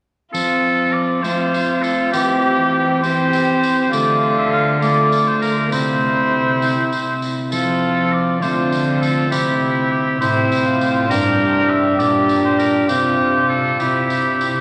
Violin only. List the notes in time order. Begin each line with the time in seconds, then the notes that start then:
0.34 F4
1.24 F4
2.13 G4
3.03 G4
3.92 F4
4.82 F4
5.71 E4
7.53 F4
8.42 F4
9.31 E4
10.22 E4
10.66 F4
11.10 G4
12.00 G4
12.90 F4
13.80 E4